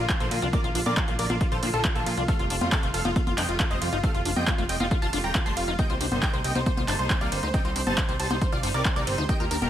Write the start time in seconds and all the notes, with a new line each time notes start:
0.00 D3 F3 A#3 F4
0.09 A#3 F4, kick, clap, closed hi-hat
0.20 A#1 D3 F3 A#3 F4 A4 C5 C6, closed hi-hat
0.31 A#2 F4 F5, open hi-hat, ride
0.42 C2 D4 F4 F5, closed hi-hat
0.53 D3 F3 A#3 F4 A#4 D5 D6, kick, closed hi-hat
0.64 A#1 F4 F5, closed hi-hat
0.75 A#1 D4 F4 F5, open hi-hat, ride
0.86 A#2 D3 F3 A#3 F4 A#4 D5 D6, high conga
0.97 A#3 F4 F5, kick, clap, closed hi-hat
1.08 A#1 D3 F3 A#3 F4 F5, closed hi-hat
1.19 A#1 D3 F3 A#3 F4 A#4 D5 D6, open hi-hat, ride
1.30 A#1 D3 F3 A#3 D4 F4 F5, closed hi-hat, high conga
1.41 D3 F3 A#3 F4 F5, kick, closed hi-hat
1.52 A#1 F4 A4 C5 C6, closed hi-hat
1.63 A#2 D3 F3 A#3 D4 F4 F5, open hi-hat, ride
1.73 A#1 D3 F3 A#3 F4 A4 A5, closed hi-hat
1.84 A#3 F4 F5, kick, clap, closed hi-hat
1.95 A#1 D3 F3 A#3 F4 A4 A5, closed hi-hat
2.06 A#2 F4 F5, open hi-hat, ride
2.17 C2 D4 F4 F5, closed hi-hat
2.28 C3 G3 A3 F4 A4 F5 F6, kick, closed hi-hat
2.39 F1 F4 F5, closed hi-hat
2.50 F1 D4 F4 F5, open hi-hat, ride
2.61 F2 C3 G3 A3 F4 F5, closed hi-hat, high conga
2.72 A3 A4 F5 F6, kick, clap, closed hi-hat
2.83 F1 C3 G3 A3 F4 F5, closed hi-hat
2.94 F1 C3 G3 A3 F4 A4 F5 F6, open hi-hat, ride
3.05 F1 C3 G3 A3 D#4 F4 F5, closed hi-hat, high conga
3.16 C3 G3 A3 F4 F5, kick, closed hi-hat, high conga
3.27 F1 F4 F5, closed hi-hat, high conga
3.38 F2 C3 G3 A3 D4 F4 D#5 G5 G6, clap, open hi-hat, ride
3.49 F1 C3 G3 A3 F4 F5, closed hi-hat
3.60 A3 F4 F5, kick, clap, closed hi-hat
3.71 F1 C3 G3 A3 F4 C5 D#5 D#6, closed hi-hat
3.82 F2 F4 F5, open hi-hat, ride
3.93 G1 D#4 F4 F5, closed hi-hat
4.04 C3 G3 A3 F4 A4 F5 F6, kick, closed hi-hat
4.14 F1 F4 F5, closed hi-hat
4.25 F1 D4 F4 F5, open hi-hat, ride
4.36 F2 C3 G3 A3 F4 D#5 G5 G6, closed hi-hat, high conga
4.47 A3 F4 F5, kick, clap, closed hi-hat
4.58 F1 C3 G3 A3 F4 F5, closed hi-hat
4.69 F1 C3 G3 A3 F4 D#5 G5 G6, open hi-hat, ride
4.80 F1 C3 G3 A3 D#4 F4 F5, closed hi-hat, high conga
4.91 C3 G3 A3 F4 F5, kick, closed hi-hat
5.02 F1 F4 F5 A5 A6, closed hi-hat
5.13 F1 C3 G3 A3 D4 F4 F5, open hi-hat, ride
5.24 D#1 C3 G3 A3 F4 G5 A#5 A#6, closed hi-hat
5.35 A3 F4 F5, kick, clap, closed hi-hat
5.46 F1 C3 G3 A3 F4 A5 C6 C7, closed hi-hat
5.57 F1 F4 F5, open hi-hat, ride
5.68 F1 D#4 F4 F5, closed hi-hat
5.79 C3 G3 A#3 D#4 D#5 G5 G6, kick, closed hi-hat
5.90 C2 F4 C5 C6, closed hi-hat
6.01 C2 D4 C5 C6, open hi-hat, ride
6.12 G1 C3 G3 A#3 D#4 C5 C6, closed hi-hat, high conga
6.22 A#3 D#5 G5 G6, kick, clap, closed hi-hat
6.33 C2 C3 G3 A#3 D#4 C5 C6, closed hi-hat
6.44 C2 C3 G3 A#3 D#4 D#5 G5 G6, open hi-hat, ride
6.55 C2 C3 G3 A#3 D#4 C5 C6, closed hi-hat, high conga
6.66 C3 G3 A#3 D#4 C5 C6, kick, closed hi-hat, high conga
6.77 C2 F4 C5 C6, closed hi-hat, high conga
6.88 G1 C3 G3 A#3 D4 D#4 C5 A5 A6, clap, open hi-hat, ride
6.99 C2 C3 G3 A#3 D#4 C5 C6, closed hi-hat
7.10 A#3 C5 C6, kick, clap, closed hi-hat
7.21 C2 C3 G3 A#3 D#4 D5 F5 F6, closed hi-hat
7.32 G1 C5 C6, open hi-hat, ride
7.43 D2 D#4 C5 C6, closed hi-hat
7.54 C3 G3 A#3 C4 D#4 D#5 G5 G6, kick, closed hi-hat
7.65 C2 F4 C5 C6, closed hi-hat
7.76 C2 D4 C5 C6, open hi-hat, ride
7.87 G1 C3 G3 C4 D#4 C5 A5 A6, closed hi-hat, high conga
7.98 A#3 C6, kick, clap, closed hi-hat
8.09 C2 C3 G3 A#3 C4 D#4 C5 C6, closed hi-hat
8.20 C2 C3 G3 C4 D#4 C5 A5 A6, open hi-hat, ride
8.30 C2 C3 G3 C4 D#4 C5 C6, closed hi-hat, high conga
8.41 C3 G3 A#3 C4 D#4 C5 C6, kick, closed hi-hat
8.52 C2 F4 D5 F5 F6, closed hi-hat
8.63 G1 C3 G3 C4 D4 D#4 C5 C6, open hi-hat, ride
8.74 C2 C3 G3 C4 D#4 A#4 D5 D6, closed hi-hat
8.85 A#3 C5 C6, kick, clap, closed hi-hat
8.96 C2 C3 G3 A#3 C4 D#4 A#4 D5 D6, closed hi-hat
9.07 G1 C5 C6, open hi-hat, ride
9.18 D2 D#4 C5 C6, closed hi-hat
9.29 D#3 G3 A#3 G4 D#5 G5 G6, kick, closed hi-hat
9.40 D#2 F4 A#4 A#5, closed hi-hat
9.51 D#2 D4 A#4 A#5, open hi-hat, ride
9.62 D#1 D#3 G3 A#3 G4 A#4 A#5, closed hi-hat, high conga